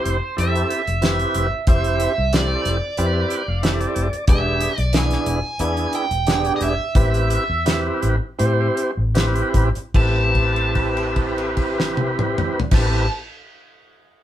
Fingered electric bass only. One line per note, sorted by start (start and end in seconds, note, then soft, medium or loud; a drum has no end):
0.06 0.18 F1 medium
0.38 0.62 F2 medium
0.88 1.24 F1 medium
1.35 1.48 F1 medium
1.68 2.05 F1 loud
2.18 2.54 C2 medium
2.66 2.79 F1 medium
2.99 3.23 F2 loud
3.48 3.84 F1 medium
3.96 4.09 F1 loud
4.28 4.65 E1 loud
4.78 5.14 B1 medium
5.27 5.40 E1 medium
5.60 5.85 E2 loud
6.11 6.48 E1 medium
6.61 6.75 E1 loud
6.79 muted fingered electric bass stroke soft
6.95 7.36 A1 medium
7.50 7.89 E2 medium
8.03 8.17 A1 medium
8.40 8.68 A2 loud
8.97 9.41 A1 medium
9.54 9.71 A1 medium
9.77 muted fingered electric bass stroke soft
9.95 12.59 A1 medium
12.72 13.06 A1 medium